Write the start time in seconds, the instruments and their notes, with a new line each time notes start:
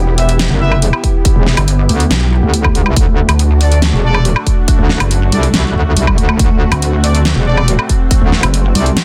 Already playing: wobble bass E1, analog synth pad B3 E4 G4
0.18 brass ensemble E4 B4 E5, open hi-hat
0.29 closed hi-hat
0.39 snare, closed hi-hat
0.50 wobble bass F#1
0.61 brass ensemble E4 B4 E5
0.72 low woodblock
0.82 closed hi-hat
0.93 low woodblock
1.04 kick, closed hi-hat
1.25 kick, closed hi-hat
1.36 wobble bass E1
1.46 snare
1.57 wobble bass G1, closed hi-hat, low woodblock
1.68 closed hi-hat
1.89 wobble bass D2, open hi-hat
2.00 closed hi-hat
2.11 wobble bass B1, snare, closed hi-hat
2.43 wobble bass D2
2.54 closed hi-hat
2.64 kick, low woodblock
2.75 closed hi-hat
2.86 low woodblock
2.96 wobble bass D2, analog synth pad A3 D4 F#4, kick, closed hi-hat
3.29 wobble bass D2, closed hi-hat, low woodblock
3.39 closed hi-hat
3.61 brass ensemble D4 A4 D5, open hi-hat
3.72 closed hi-hat
3.82 snare, closed hi-hat
3.93 wobble bass E1
4.04 brass ensemble D4 A4 D5
4.14 low woodblock
4.25 closed hi-hat
4.36 low woodblock
4.47 kick, closed hi-hat
4.68 kick, closed hi-hat
4.79 wobble bass D2
4.89 snare
5.00 wobble bass F#1, closed hi-hat, low woodblock
5.11 closed hi-hat
5.32 wobble bass C2, brass ensemble D4 A4 D5, open hi-hat
5.43 closed hi-hat
5.54 wobble bass C2, snare, closed hi-hat
5.75 wobble bass D2
5.97 wobble bass C2, closed hi-hat
6.07 kick, low woodblock
6.18 wobble bass D2, closed hi-hat
6.29 low woodblock
6.39 wobble bass D2, analog synth pad C4, kick, closed hi-hat
6.72 wobble bass D2, closed hi-hat, low woodblock
6.82 closed hi-hat
7.04 brass ensemble D4 A4 D5, open hi-hat
7.15 closed hi-hat
7.25 snare, closed hi-hat
7.36 wobble bass E1
7.47 brass ensemble D4 A4 D5
7.57 low woodblock
7.68 closed hi-hat
7.79 low woodblock
7.89 kick, closed hi-hat
8.11 kick, closed hi-hat
8.22 wobble bass D2
8.32 snare
8.43 wobble bass F#1, closed hi-hat, low woodblock
8.54 closed hi-hat
8.75 wobble bass C2, brass ensemble D4 A4 D5, open hi-hat
8.86 closed hi-hat
8.97 snare, closed hi-hat